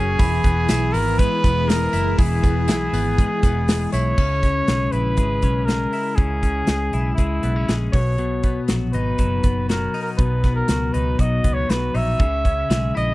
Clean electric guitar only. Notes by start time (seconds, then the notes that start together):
Already playing: F#2 F#3 A#3 C#4
0.19 E3
0.44 B3
0.69 E4
0.94 B3
1.18 G#3
1.44 B3
1.68 G#3
1.93 E4
2.18 E3
2.43 B3
2.68 E4
2.94 B3
3.19 G#3
3.44 B3
3.69 G#3
3.94 E4
4.19 C#3
4.43 C#4
4.69 G#3
4.93 E4
5.18 G#3
5.43 C#4
5.68 G#3
5.93 E4
6.18 C#3
6.43 C#4
6.68 G#3
6.94 E4
7.19 G#3
7.43 B3
7.56 C#4
7.69 G#3
7.94 B2
8.19 B2
8.44 B3
8.69 F#3
8.94 D#4
9.19 F#3
9.44 B3
9.69 F#3
9.94 D#4
10.19 B2
10.45 B3
10.69 F#3
10.94 D#4
11.19 F#3
11.45 B3
11.70 F#3
11.95 D#4
12.19 C#3
12.45 C#4
12.70 G#3
12.95 E4